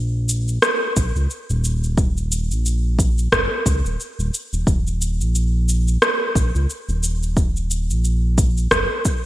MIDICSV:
0, 0, Header, 1, 3, 480
1, 0, Start_track
1, 0, Key_signature, -6, "minor"
1, 0, Tempo, 674157
1, 1405, Time_signature, 4, 2, 24, 8
1, 6590, End_track
2, 0, Start_track
2, 0, Title_t, "Analog synth bass"
2, 0, Program_c, 0, 38
2, 0, Note_on_c, 0, 34, 79
2, 416, Note_off_c, 0, 34, 0
2, 690, Note_on_c, 0, 34, 86
2, 799, Note_off_c, 0, 34, 0
2, 824, Note_on_c, 0, 37, 87
2, 907, Note_off_c, 0, 37, 0
2, 1066, Note_on_c, 0, 27, 86
2, 1785, Note_on_c, 0, 34, 80
2, 1796, Note_off_c, 0, 27, 0
2, 2335, Note_off_c, 0, 34, 0
2, 2368, Note_on_c, 0, 30, 97
2, 2478, Note_off_c, 0, 30, 0
2, 2608, Note_on_c, 0, 37, 100
2, 2718, Note_off_c, 0, 37, 0
2, 2744, Note_on_c, 0, 27, 88
2, 2827, Note_off_c, 0, 27, 0
2, 2982, Note_on_c, 0, 27, 93
2, 3065, Note_off_c, 0, 27, 0
2, 3224, Note_on_c, 0, 27, 73
2, 3307, Note_off_c, 0, 27, 0
2, 3326, Note_on_c, 0, 27, 101
2, 3702, Note_on_c, 0, 34, 87
2, 3713, Note_off_c, 0, 27, 0
2, 4254, Note_off_c, 0, 34, 0
2, 4525, Note_on_c, 0, 34, 82
2, 4636, Note_off_c, 0, 34, 0
2, 4664, Note_on_c, 0, 37, 101
2, 4747, Note_off_c, 0, 37, 0
2, 4902, Note_on_c, 0, 27, 87
2, 5625, Note_on_c, 0, 34, 80
2, 5635, Note_off_c, 0, 27, 0
2, 6175, Note_off_c, 0, 34, 0
2, 6205, Note_on_c, 0, 30, 86
2, 6316, Note_off_c, 0, 30, 0
2, 6590, End_track
3, 0, Start_track
3, 0, Title_t, "Drums"
3, 205, Note_on_c, 9, 82, 68
3, 276, Note_off_c, 9, 82, 0
3, 343, Note_on_c, 9, 82, 27
3, 415, Note_off_c, 9, 82, 0
3, 444, Note_on_c, 9, 37, 76
3, 446, Note_on_c, 9, 82, 43
3, 515, Note_off_c, 9, 37, 0
3, 517, Note_off_c, 9, 82, 0
3, 687, Note_on_c, 9, 82, 75
3, 688, Note_on_c, 9, 36, 98
3, 758, Note_off_c, 9, 82, 0
3, 759, Note_off_c, 9, 36, 0
3, 824, Note_on_c, 9, 82, 30
3, 895, Note_off_c, 9, 82, 0
3, 928, Note_on_c, 9, 82, 39
3, 1000, Note_off_c, 9, 82, 0
3, 1066, Note_on_c, 9, 82, 28
3, 1138, Note_off_c, 9, 82, 0
3, 1170, Note_on_c, 9, 82, 74
3, 1241, Note_off_c, 9, 82, 0
3, 1307, Note_on_c, 9, 82, 29
3, 1379, Note_off_c, 9, 82, 0
3, 1406, Note_on_c, 9, 36, 118
3, 1408, Note_on_c, 9, 82, 42
3, 1478, Note_off_c, 9, 36, 0
3, 1480, Note_off_c, 9, 82, 0
3, 1548, Note_on_c, 9, 82, 30
3, 1619, Note_off_c, 9, 82, 0
3, 1650, Note_on_c, 9, 82, 74
3, 1722, Note_off_c, 9, 82, 0
3, 1789, Note_on_c, 9, 82, 33
3, 1860, Note_off_c, 9, 82, 0
3, 1891, Note_on_c, 9, 82, 47
3, 1962, Note_off_c, 9, 82, 0
3, 2127, Note_on_c, 9, 36, 99
3, 2131, Note_on_c, 9, 82, 76
3, 2198, Note_off_c, 9, 36, 0
3, 2202, Note_off_c, 9, 82, 0
3, 2267, Note_on_c, 9, 82, 31
3, 2338, Note_off_c, 9, 82, 0
3, 2365, Note_on_c, 9, 36, 61
3, 2367, Note_on_c, 9, 37, 77
3, 2369, Note_on_c, 9, 82, 41
3, 2437, Note_off_c, 9, 36, 0
3, 2438, Note_off_c, 9, 37, 0
3, 2440, Note_off_c, 9, 82, 0
3, 2605, Note_on_c, 9, 36, 99
3, 2608, Note_on_c, 9, 82, 79
3, 2676, Note_off_c, 9, 36, 0
3, 2679, Note_off_c, 9, 82, 0
3, 2746, Note_on_c, 9, 82, 31
3, 2817, Note_off_c, 9, 82, 0
3, 2849, Note_on_c, 9, 82, 42
3, 2920, Note_off_c, 9, 82, 0
3, 2988, Note_on_c, 9, 82, 30
3, 3059, Note_off_c, 9, 82, 0
3, 3090, Note_on_c, 9, 82, 76
3, 3161, Note_off_c, 9, 82, 0
3, 3227, Note_on_c, 9, 82, 30
3, 3298, Note_off_c, 9, 82, 0
3, 3324, Note_on_c, 9, 36, 117
3, 3329, Note_on_c, 9, 82, 42
3, 3396, Note_off_c, 9, 36, 0
3, 3400, Note_off_c, 9, 82, 0
3, 3468, Note_on_c, 9, 82, 29
3, 3540, Note_off_c, 9, 82, 0
3, 3570, Note_on_c, 9, 82, 79
3, 3642, Note_off_c, 9, 82, 0
3, 3709, Note_on_c, 9, 82, 33
3, 3780, Note_off_c, 9, 82, 0
3, 3811, Note_on_c, 9, 82, 48
3, 3882, Note_off_c, 9, 82, 0
3, 4049, Note_on_c, 9, 82, 72
3, 4120, Note_off_c, 9, 82, 0
3, 4185, Note_on_c, 9, 82, 30
3, 4256, Note_off_c, 9, 82, 0
3, 4287, Note_on_c, 9, 37, 76
3, 4288, Note_on_c, 9, 82, 42
3, 4358, Note_off_c, 9, 37, 0
3, 4360, Note_off_c, 9, 82, 0
3, 4525, Note_on_c, 9, 36, 105
3, 4529, Note_on_c, 9, 82, 74
3, 4596, Note_off_c, 9, 36, 0
3, 4600, Note_off_c, 9, 82, 0
3, 4666, Note_on_c, 9, 82, 34
3, 4738, Note_off_c, 9, 82, 0
3, 4770, Note_on_c, 9, 82, 42
3, 4841, Note_off_c, 9, 82, 0
3, 4904, Note_on_c, 9, 82, 28
3, 4975, Note_off_c, 9, 82, 0
3, 5007, Note_on_c, 9, 82, 77
3, 5078, Note_off_c, 9, 82, 0
3, 5147, Note_on_c, 9, 82, 33
3, 5218, Note_off_c, 9, 82, 0
3, 5245, Note_on_c, 9, 36, 113
3, 5247, Note_on_c, 9, 82, 43
3, 5316, Note_off_c, 9, 36, 0
3, 5318, Note_off_c, 9, 82, 0
3, 5387, Note_on_c, 9, 82, 28
3, 5458, Note_off_c, 9, 82, 0
3, 5487, Note_on_c, 9, 82, 78
3, 5558, Note_off_c, 9, 82, 0
3, 5627, Note_on_c, 9, 82, 35
3, 5698, Note_off_c, 9, 82, 0
3, 5727, Note_on_c, 9, 82, 43
3, 5798, Note_off_c, 9, 82, 0
3, 5965, Note_on_c, 9, 36, 105
3, 5967, Note_on_c, 9, 82, 69
3, 6036, Note_off_c, 9, 36, 0
3, 6038, Note_off_c, 9, 82, 0
3, 6105, Note_on_c, 9, 82, 30
3, 6176, Note_off_c, 9, 82, 0
3, 6203, Note_on_c, 9, 37, 69
3, 6205, Note_on_c, 9, 36, 61
3, 6205, Note_on_c, 9, 82, 43
3, 6274, Note_off_c, 9, 37, 0
3, 6276, Note_off_c, 9, 36, 0
3, 6276, Note_off_c, 9, 82, 0
3, 6443, Note_on_c, 9, 82, 80
3, 6445, Note_on_c, 9, 36, 94
3, 6515, Note_off_c, 9, 82, 0
3, 6517, Note_off_c, 9, 36, 0
3, 6590, End_track
0, 0, End_of_file